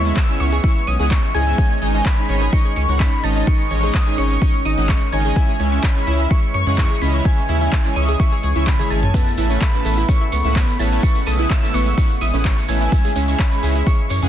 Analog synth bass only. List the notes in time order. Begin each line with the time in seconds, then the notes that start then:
Already playing: D#2
0.40 C#2
0.87 B1
1.00 C#2
1.35 C#2
1.82 G#1
2.29 G#1
2.76 C#2
2.89 C#2
3.24 G#1
3.71 A1
4.18 G#1
4.65 G#1
4.78 G#1
5.13 G#1
5.60 C#2
6.07 C#2
6.54 F#2
6.67 F#2
7.02 C#2
7.49 D#2
7.96 C#2
8.43 C#2
8.56 C#2
8.91 G#1
9.38 A1
9.85 A1
10.32 C#2
10.45 C#2
10.80 A1
11.27 B1
11.74 A1
12.21 A1
12.34 A1
12.69 A1
13.16 C#2
13.63 C#2
14.10 F#2
14.23 F#2